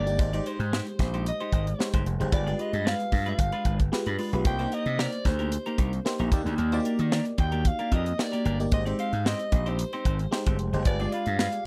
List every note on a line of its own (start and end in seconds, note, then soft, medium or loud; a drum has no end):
0.00 0.19 G1 medium
0.00 0.06 A#3 medium
0.00 0.11 A#3 medium
0.00 0.06 D#4 medium
0.00 0.07 G4 medium
0.00 0.07 D5 medium
0.00 0.50 D5 loud
0.00 0.22 D#5 medium
0.06 0.15 A#3 medium
0.06 0.15 D#4 medium
0.06 0.15 G4 medium
0.06 0.15 D5 medium
0.06 muted clean electric guitar stroke soft
0.06 closed hi-hat soft
0.18 0.39 G#1 medium
0.18 0.29 G#3 medium
0.18 0.29 D#4 medium
0.18 0.29 G4 medium
0.18 0.29 C5 medium
0.18 muted clean electric guitar stroke soft
0.18 kick loud
0.18 closed hi-hat medium
0.33 1.05 G#3 medium
0.33 0.44 G#3 medium
0.33 1.05 D#4 medium
0.33 0.45 D#4 medium
0.33 1.06 G4 medium
0.33 0.45 G4 medium
0.33 1.06 C5 medium
0.33 0.46 D5 medium
0.33 closed hi-hat soft
0.46 0.61 G#3 medium
0.46 0.60 D#4 medium
0.46 0.60 G4 medium
0.46 0.59 C5 medium
0.46 1.00 C5 medium
0.46 closed hi-hat medium
0.59 0.80 G#2 medium
0.59 muted clean electric guitar stroke soft
0.59 closed hi-hat soft
0.72 0.91 G#3 medium
0.72 0.87 D#4 medium
0.72 0.87 G4 medium
0.72 0.86 C5 medium
0.72 snare loud
0.87 muted clean electric guitar stroke soft
0.87 closed hi-hat soft
0.99 1.30 A#1 medium
0.99 1.25 C5 medium
0.99 muted clean electric guitar stroke soft
0.99 kick medium
0.99 snare soft
0.99 closed hi-hat medium
1.14 1.25 G#3 soft
1.14 1.25 D#4 medium
1.14 1.25 G4 medium
1.14 1.26 C5 medium
1.14 closed hi-hat soft
1.26 2.03 D#5 medium
1.26 muted clean electric guitar stroke soft
1.26 closed hi-hat loud
1.40 1.52 G#3 medium
1.40 1.52 D#4 medium
1.40 1.53 G4 medium
1.40 1.53 C5 medium
1.40 closed hi-hat soft
1.52 1.72 G#1 medium
1.52 1.68 G#3 medium
1.52 1.67 D#4 medium
1.52 1.67 G4 medium
1.52 1.67 C5 medium
1.52 kick medium
1.52 closed hi-hat medium
1.67 muted clean electric guitar stroke soft
1.67 closed hi-hat soft
1.79 2.06 G#3 medium
1.79 2.06 D#4 medium
1.79 2.07 G4 medium
1.79 2.07 C5 medium
1.79 muted clean electric guitar stroke soft
1.79 snare medium
1.93 2.03 G1 medium
1.93 2.05 G#3 medium
1.93 2.05 D#4 medium
1.93 2.05 G4 medium
1.93 2.06 C5 medium
1.93 kick medium
1.93 closed hi-hat medium
2.06 2.17 F1 medium
2.06 muted clean electric guitar stroke soft
2.06 closed hi-hat medium
2.20 2.29 F#1 medium
2.20 2.28 G#3 medium
2.20 2.28 D#4 medium
2.20 2.29 G4 medium
2.20 2.29 C5 medium
2.20 muted clean electric guitar stroke soft
2.20 closed hi-hat medium
2.32 2.52 G1 medium
2.32 2.42 G#3 medium
2.32 2.42 F4 medium
2.32 2.42 G4 medium
2.32 2.43 B4 medium
2.32 2.62 D5 medium
2.32 muted clean electric guitar stroke soft
2.32 kick loud
2.32 closed hi-hat medium
2.47 3.19 G#3 medium
2.47 2.57 G#3 medium
2.47 2.58 D4 medium
2.47 2.58 F4 medium
2.47 3.19 F4 medium
2.47 3.19 G4 medium
2.47 3.19 B4 medium
2.47 2.59 D5 medium
2.47 closed hi-hat soft
2.58 2.73 G#3 medium
2.58 2.73 D4 medium
2.58 2.73 F4 medium
2.58 2.72 B4 medium
2.58 2.86 D#5 medium
2.58 closed hi-hat medium
2.73 2.93 G2 medium
2.73 muted clean electric guitar stroke soft
2.73 closed hi-hat medium
2.85 3.04 G#3 medium
2.85 2.99 D4 medium
2.85 2.99 F4 medium
2.85 2.98 B4 medium
2.85 3.25 F5 medium
2.85 snare loud
3.00 muted clean electric guitar stroke soft
3.00 closed hi-hat medium
3.12 3.32 G2 medium
3.12 muted clean electric guitar stroke soft
3.12 kick medium
3.12 open hi-hat medium
3.26 3.37 G#3 soft
3.26 3.38 D4 soft
3.26 3.38 F4 soft
3.26 3.38 B4 medium
3.26 3.78 F5 medium
3.26 closed hi-hat soft
3.39 3.50 G1 loud
3.39 muted clean electric guitar stroke soft
3.39 kick medium
3.39 closed hi-hat loud
3.52 3.64 G#3 medium
3.52 3.65 D4 medium
3.52 3.65 F4 medium
3.52 3.65 B4 medium
3.52 closed hi-hat soft
3.65 3.80 G#1 medium
3.65 3.80 G#3 medium
3.65 3.79 D4 medium
3.65 3.79 F4 medium
3.65 3.79 B4 medium
3.65 kick medium
3.65 closed hi-hat medium
3.79 3.89 G1 medium
3.79 muted clean electric guitar stroke soft
3.79 kick medium
3.79 closed hi-hat medium
3.92 4.19 G#3 medium
3.92 4.19 F4 medium
3.92 4.20 G4 medium
3.92 4.20 B4 medium
3.92 muted clean electric guitar stroke soft
3.92 snare medium
4.06 4.16 G2 medium
4.06 4.17 G#3 soft
4.06 4.17 D4 soft
4.06 4.18 F4 soft
4.06 4.18 B4 medium
4.06 closed hi-hat soft
4.18 4.37 G#3 medium
4.18 4.32 D4 medium
4.18 4.32 F4 medium
4.18 4.32 B4 medium
4.18 open hi-hat medium
4.33 4.45 B1 medium
4.33 4.41 G#3 medium
4.33 4.42 F4 medium
4.33 4.42 G4 medium
4.33 4.42 B4 medium
4.33 muted clean electric guitar stroke soft
4.33 closed hi-hat soft
4.45 4.65 C2 loud
4.45 4.55 A#3 medium
4.45 4.55 D#4 medium
4.45 4.56 G4 medium
4.45 4.56 C5 medium
4.45 4.75 G5 loud
4.45 muted clean electric guitar stroke soft
4.45 kick loud
4.45 closed hi-hat medium
4.59 5.32 A#3 medium
4.59 4.70 A#3 medium
4.59 4.66 D4 medium
4.59 4.71 D#4 medium
4.59 4.71 G4 medium
4.59 5.32 G4 medium
4.59 4.72 C5 medium
4.59 5.32 C5 medium
4.59 closed hi-hat soft
4.66 5.35 D#4 medium
4.72 4.87 A#3 medium
4.72 4.86 D#4 medium
4.72 4.86 G4 medium
4.72 4.86 A#4 medium
4.72 5.02 D#5 medium
4.72 closed hi-hat medium
4.86 5.06 C3 medium
4.86 muted clean electric guitar stroke soft
4.86 closed hi-hat soft
4.98 5.17 A#3 medium
4.98 5.12 D#4 medium
4.98 5.12 G4 medium
4.98 5.11 A#4 loud
4.98 5.30 D5 medium
4.98 snare loud
5.12 muted clean electric guitar stroke soft
5.12 closed hi-hat medium
5.25 5.56 D2 medium
5.25 6.07 C5 medium
5.25 muted clean electric guitar stroke soft
5.25 kick medium
5.25 snare soft
5.25 closed hi-hat medium
5.39 5.50 A#3 soft
5.39 5.51 D#4 medium
5.39 5.51 G4 medium
5.39 5.52 A#4 medium
5.39 closed hi-hat soft
5.52 muted clean electric guitar stroke soft
5.52 closed hi-hat loud
5.66 5.77 A#3 medium
5.66 5.78 D#4 medium
5.66 5.78 G4 medium
5.66 5.78 A#4 medium
5.66 closed hi-hat soft
5.78 5.98 C2 medium
5.78 5.93 A#3 medium
5.78 5.93 D#4 medium
5.78 5.93 G4 medium
5.78 5.92 A#4 medium
5.78 kick medium
5.78 closed hi-hat medium
5.93 muted clean electric guitar stroke soft
5.93 closed hi-hat medium
6.05 6.31 A#3 medium
6.05 6.31 D#4 medium
6.05 6.31 G4 medium
6.05 6.32 C5 loud
6.05 muted clean electric guitar stroke soft
6.05 snare medium
6.19 6.29 A#1 medium
6.19 6.31 A#3 medium
6.19 6.32 D#4 medium
6.19 6.31 G4 medium
6.19 6.32 A#4 medium
6.19 closed hi-hat soft
6.32 6.43 D#2 medium
6.32 6.64 A#3 medium
6.32 6.65 D#4 medium
6.32 6.65 G4 medium
6.32 6.65 D5 medium
6.32 muted clean electric guitar stroke soft
6.32 kick loud
6.32 closed hi-hat medium
6.46 6.55 D2 medium
6.46 muted clean electric guitar stroke soft
6.46 closed hi-hat soft
6.58 6.78 D#2 loud
6.58 muted clean electric guitar stroke soft
6.58 closed hi-hat medium
6.72 7.45 A#3 medium
6.72 6.83 A#3 medium
6.72 6.84 D4 medium
6.72 7.45 D#4 medium
6.72 6.79 F#4 medium
6.72 6.84 G4 medium
6.72 6.86 C5 medium
6.72 7.45 D5 loud
6.72 closed hi-hat medium
6.80 7.48 G4 medium
6.85 7.00 A#3 medium
6.85 6.99 D4 medium
6.85 6.99 G4 medium
6.85 6.99 A#4 medium
6.85 closed hi-hat medium
6.99 7.19 D#3 medium
6.99 closed hi-hat soft
7.11 7.30 A#3 medium
7.11 7.26 D4 medium
7.11 7.25 G4 medium
7.11 7.25 A#4 medium
7.11 snare loud
7.25 muted clean electric guitar stroke soft
7.25 closed hi-hat medium
7.38 7.69 D#2 medium
7.38 7.69 G5 medium
7.38 muted clean electric guitar stroke medium
7.38 kick medium
7.38 closed hi-hat medium
7.52 7.64 A#3 medium
7.52 7.64 D4 medium
7.52 7.64 G4 medium
7.52 7.65 A#4 medium
7.52 closed hi-hat soft
7.65 7.95 F5 medium
7.65 muted clean electric guitar stroke soft
7.65 kick medium
7.65 closed hi-hat loud
7.79 7.91 A#3 medium
7.79 7.91 D4 medium
7.79 7.91 G4 medium
7.79 7.92 A#4 medium
7.79 closed hi-hat soft
7.92 8.12 F2 medium
7.92 8.07 A#3 medium
7.92 8.06 D4 medium
7.92 8.06 G4 medium
7.92 8.05 A#4 medium
7.92 8.22 D#5 medium
7.92 kick medium
7.92 closed hi-hat medium
8.06 muted clean electric guitar stroke medium
8.06 closed hi-hat medium
8.18 8.46 A#3 medium
8.18 8.46 D#4 medium
8.18 8.46 G4 medium
8.18 8.46 D5 medium
8.18 8.61 D5 medium
8.18 muted clean electric guitar stroke soft
8.18 snare medium
8.32 8.43 A#3 soft
8.32 8.44 D4 soft
8.32 8.44 G4 soft
8.32 8.45 A#4 soft
8.32 closed hi-hat medium
8.45 8.65 G1 medium
8.45 8.63 A#3 medium
8.45 8.59 D4 medium
8.45 8.59 G4 medium
8.45 8.58 A#4 loud
8.45 closed hi-hat medium
8.60 8.68 A#3 medium
8.60 8.68 D#4 medium
8.60 8.68 G4 medium
8.60 8.69 D5 medium
8.60 muted clean electric guitar stroke soft
8.60 closed hi-hat soft
8.72 8.92 G#1 loud
8.72 8.82 G#3 medium
8.72 8.82 D#4 medium
8.72 8.82 G4 medium
8.72 8.83 C5 medium
8.72 8.85 D#5 medium
8.72 muted clean electric guitar stroke soft
8.72 kick loud
8.72 closed hi-hat medium
8.86 9.58 G#3 medium
8.86 8.97 C4 medium
8.86 9.58 D#4 medium
8.86 8.98 D#4 medium
8.86 8.98 G4 medium
8.86 9.59 G4 medium
8.86 9.59 C5 medium
8.86 8.99 D5 medium
8.86 closed hi-hat medium
8.98 9.13 C4 medium
8.98 9.13 D#4 medium
8.98 9.13 G4 medium
8.98 9.12 C5 medium
8.98 9.24 F5 medium
8.98 closed hi-hat medium
9.13 9.33 G#2 medium
9.13 muted clean electric guitar stroke soft
9.13 closed hi-hat soft
9.25 9.44 C4 medium
9.25 9.40 D#4 medium
9.25 9.39 G4 medium
9.25 9.39 C5 loud
9.25 9.70 D#5 medium
9.25 snare loud
9.39 muted clean electric guitar stroke soft
9.39 closed hi-hat medium
9.52 9.83 A#1 loud
9.52 muted clean electric guitar stroke soft
9.52 kick medium
9.52 closed hi-hat medium
9.66 9.78 C4 soft
9.66 9.78 D#4 soft
9.66 9.78 G4 medium
9.66 9.79 C5 medium
9.66 10.48 C5 medium
9.66 closed hi-hat soft
9.79 muted clean electric guitar stroke soft
9.79 closed hi-hat loud
9.93 10.04 C4 medium
9.93 10.05 D#4 medium
9.93 10.05 G4 medium
9.93 10.06 C5 medium
9.93 closed hi-hat soft
10.05 10.25 G#1 medium
10.05 10.20 C4 medium
10.05 10.20 D#4 medium
10.05 10.20 G4 medium
10.05 10.19 C5 medium
10.05 kick medium
10.05 closed hi-hat medium
10.19 muted clean electric guitar stroke soft
10.19 closed hi-hat medium
10.31 10.59 G#3 medium
10.31 10.59 D#4 medium
10.31 10.59 G4 medium
10.31 10.60 C5 loud
10.31 muted clean electric guitar stroke soft
10.31 snare medium
10.46 10.59 G1 medium
10.46 10.58 C4 medium
10.46 10.58 D#4 medium
10.46 10.59 G4 medium
10.46 10.59 C5 medium
10.46 kick medium
10.46 closed hi-hat medium
10.59 10.70 F1 medium
10.59 muted clean electric guitar stroke soft
10.59 closed hi-hat medium
10.73 10.82 F#1 medium
10.73 10.82 G#3 medium
10.73 10.82 D#4 medium
10.73 10.82 G4 medium
10.73 10.82 C5 medium
10.73 muted clean electric guitar stroke soft
10.73 closed hi-hat soft
10.85 11.06 G1 loud
10.85 10.96 G#3 medium
10.85 10.96 F4 medium
10.85 10.96 G4 medium
10.85 10.96 B4 medium
10.85 11.14 D5 medium
10.85 muted clean electric guitar stroke soft
10.85 kick loud
10.85 closed hi-hat medium
11.00 11.66 G#3 medium
11.00 11.11 G#3 medium
11.00 11.12 D4 medium
11.00 11.12 F4 medium
11.00 11.66 F4 medium
11.00 11.66 G4 medium
11.00 11.13 D5 medium
11.00 11.66 D5 medium
11.00 closed hi-hat soft
11.12 11.27 G#3 medium
11.12 11.27 D4 medium
11.12 11.26 F4 medium
11.12 11.26 B4 medium
11.12 11.38 F5 medium
11.12 closed hi-hat medium
11.26 11.47 G2 medium
11.26 muted clean electric guitar stroke soft
11.26 closed hi-hat medium
11.39 11.57 G#3 medium
11.39 11.53 D4 medium
11.39 11.53 F4 medium
11.39 11.52 B4 medium
11.39 11.64 F5 medium
11.39 snare loud
11.52 muted clean electric guitar stroke soft
11.52 closed hi-hat medium